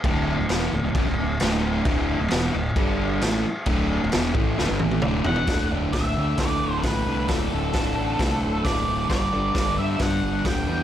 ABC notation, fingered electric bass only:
X:1
M:4/4
L:1/16
Q:1/4=133
K:D
V:1 name="Fingered electric bass" clef=bass
D,,,3 D,,, E,,,2 D,,, D,,, F,,, D,,, D,,,2 D,,,4 | D,,,3 D,,, E,,,2 D,,,2 G,,,4 A,,,2 z2 | D,,,3 D,,, E,,,2 A,,,2 D,,, G,,, A,,,2 D,,,2 E,,,2 | [K:Dmix] D,,,2 D,,,2 D,,,2 D,,2 D,,2 D,,,2 A,,,2 C,,2 |
D,,,2 D,,,2 D,,,2 A,,,2 C,,2 D,,,2 D,,,4 | G,,,2 G,,,2 G,,,2 G,,2 G,,2 G,,,2 D,,,2 E,,2 |]